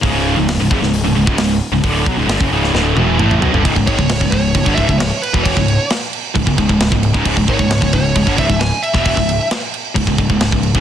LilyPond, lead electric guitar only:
\new Staff \with { instrumentName = "Lead electric guitar" } { \time 4/4 \key cis \minor \tempo 4 = 133 r1 | r1 | r8 cis''4 cis''4 e''8 cis''8 b'8 | cis''4 r2. |
r8 cis''4 cis''4 e''8 gis''8 e''8 | e''4 r2. | }